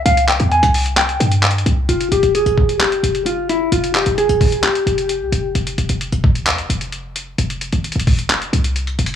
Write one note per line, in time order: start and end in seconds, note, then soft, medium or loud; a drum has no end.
0.06 0.39 C2 loud
0.06 0.27 F5 medium
0.06 closed hi-hat medium
0.17 closed hi-hat medium
0.28 0.50 G5 medium
0.28 clap loud
0.28 closed hi-hat medium
0.40 0.62 E2 loud
0.40 closed hi-hat medium
0.51 0.95 G#5 medium
0.51 closed hi-hat soft
0.63 1.18 C2 loud
0.63 closed hi-hat medium
0.74 open hi-hat medium
0.86 closed hi-hat medium
0.97 1.85 G5 loud
0.97 clap loud
0.97 closed hi-hat medium
1.09 closed hi-hat medium
1.20 1.64 G2 loud
1.20 closed hi-hat medium
1.32 closed hi-hat medium
1.43 clap medium
1.43 closed hi-hat medium
1.51 closed hi-hat medium
1.58 closed hi-hat soft
1.66 1.88 C2 loud
1.66 closed hi-hat medium
1.89 2.11 F1 loud
1.89 2.10 F4 medium
1.89 closed hi-hat medium
2.01 closed hi-hat medium
2.12 2.23 F1 loud
2.12 2.33 G4 medium
2.12 closed hi-hat medium
2.23 2.45 F1 loud
2.23 closed hi-hat medium
2.35 2.78 G#4 medium
2.35 closed hi-hat medium
2.46 3.01 F1 loud
2.46 closed hi-hat soft
2.58 kick medium
2.69 closed hi-hat medium
2.80 3.24 G4 medium
2.80 clap loud
2.80 closed hi-hat medium
2.92 closed hi-hat medium
3.03 3.69 F1 loud
3.03 closed hi-hat medium
3.15 closed hi-hat medium
3.26 3.47 F4 medium
3.26 closed hi-hat medium
3.49 3.70 E4 medium
3.49 closed hi-hat medium
3.72 4.05 F1 loud
3.72 3.93 F4 medium
3.72 closed hi-hat medium
3.84 closed hi-hat medium
3.95 4.16 G4 medium
3.95 clap loud
3.95 closed hi-hat medium
4.06 4.28 F1 loud
4.06 closed hi-hat medium
4.18 4.61 G#4 medium
4.18 closed hi-hat medium
4.29 4.62 F1 loud
4.29 closed hi-hat soft
4.41 kick medium
4.41 open hi-hat medium
4.52 closed hi-hat medium
4.64 5.51 G4 medium
4.64 clap loud
4.64 closed hi-hat medium
4.75 closed hi-hat medium
4.87 5.22 F1 loud
4.87 closed hi-hat medium
4.98 closed hi-hat medium
5.09 closed hi-hat medium
5.21 5.32 C2 loud
5.32 5.54 F1 loud
5.32 closed hi-hat medium
5.55 5.77 F1 loud
5.55 closed hi-hat medium
5.67 closed hi-hat medium
5.78 5.89 F1 loud
5.78 closed hi-hat medium
5.89 6.12 F1 loud
5.89 closed hi-hat medium
6.01 closed hi-hat medium
6.12 6.48 F1 loud
6.12 closed hi-hat soft
6.24 kick medium
6.35 closed hi-hat medium
6.47 6.60 F2 loud
6.47 clap loud
6.47 closed hi-hat medium
6.58 6.69 F1 loud
6.58 closed hi-hat medium
6.70 7.36 F1 loud
6.70 closed hi-hat medium
6.81 closed hi-hat medium
6.92 closed hi-hat medium
7.16 closed hi-hat medium
7.38 7.71 F1 loud
7.38 closed hi-hat medium
7.50 closed hi-hat medium
7.61 closed hi-hat medium
7.72 7.95 G#1 loud
7.72 closed hi-hat medium
7.84 closed hi-hat soft
7.92 8.51 F1 loud
7.92 closed hi-hat medium
8.00 closed hi-hat medium
8.07 kick medium
8.07 open hi-hat medium
8.19 closed hi-hat medium
8.30 clap loud
8.30 closed hi-hat medium
8.42 closed hi-hat medium
8.53 8.97 C2 loud
8.53 closed hi-hat medium
8.64 closed hi-hat medium
8.76 closed hi-hat medium
8.87 closed hi-hat soft
8.99 9.15 F1 loud
8.99 closed hi-hat medium
9.06 closed hi-hat medium